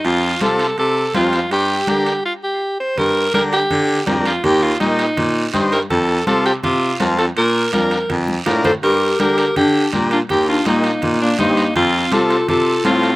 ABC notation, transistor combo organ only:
X:1
M:4/4
L:1/8
Q:1/4=164
K:Gm
V:1 name="Transistor combo organ"
z2 [CFA] z3 [CFG] z | z2 [DGB] z4 z | z2 [DGB] z3 [DGB] z | z2 [EGB] z3 [EGc] z |
z2 [CFA] z3 [CFA] z | z2 [DFB] z3 [DFB] z | z2 [DGB] z3 [DGB] z | z2 [EGB] z3 [EGc] z |
z2 [CFA] z3 [CFA] z |]